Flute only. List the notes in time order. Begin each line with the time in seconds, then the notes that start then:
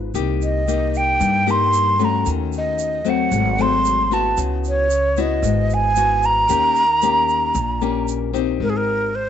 0.43 D#5
0.97 G5
1.51 C6
2.05 A#5
2.58 D#5
3.10 F#5
3.61 C6
4.13 A5
4.68 C#5
5.21 D#5
5.74 G#5
6.25 A#5
8.63 A#4
8.70 G#4
8.77 A#4
9.15 C5